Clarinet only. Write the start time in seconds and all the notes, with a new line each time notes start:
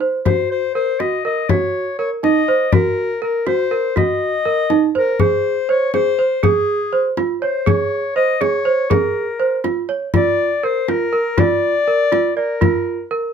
0.26 C5
0.51 C5
0.75 C5
1.00 D#5
1.26 D#5
1.49 C#5
1.99 C#5
2.24 D#5
2.73 A#4
3.23 A#4
3.48 C5
3.97 D#5
4.97 A#4
5.21 C5
5.70 C#5
5.94 C5
6.44 G#4
7.42 C5
7.68 C#5
8.16 D#5
8.41 C#5
8.91 A#4
10.16 D5
10.64 C5
10.89 A#4
11.39 D5
12.36 A#4